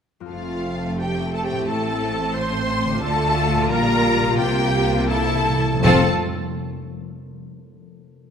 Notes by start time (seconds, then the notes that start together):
0.20 F2 C4 F4
0.26 F2 A3 C4 F4 A4 F5
0.30 F1 A3 C4
0.99 G4 G5
1.34 A4 A5
1.45 G4 G5
1.50 A2
1.54 C4
1.59 E4
1.63 A4
1.68 A1 A2 A4 A5
2.35 C5 C6
2.85 D3
2.89 D4
2.94 F4
2.98 D3 A3 A4
3.02 D2 A3 F4 A4 A5
3.53 A#2
3.58 D4
3.62 F4
3.67 A#2 G4
3.71 A#1 G3 A#4 A#5
4.22 C3
4.26 A#3
4.31 F4
4.35 C3 A#3 G4 G5
4.39 C2 A#3
4.92 C3
4.97 A#3
5.01 D4
5.06 E4
5.10 C3 E4 A4 A5
5.18 C3
5.26 C3
5.34 C3
5.42 C3
5.50 C3
5.58 C3
5.66 C3
5.75 C3
5.79 F2 F3 A3 F4
5.83 F1 F2 C4 F4 A4 A5
5.88 C5